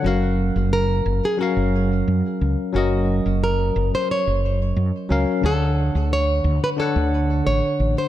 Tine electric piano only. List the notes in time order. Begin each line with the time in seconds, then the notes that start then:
0.03 F#3 C#4 A#4
0.07 F5
1.37 F#3 C#4 A#4
1.43 F5
2.72 F#3 C#4 A#4
2.78 D#5
5.09 F#3 C#4 A#4 F5
5.41 D3 D4 C#5
5.46 F#5
6.76 D3 D4 C#5
6.82 F#5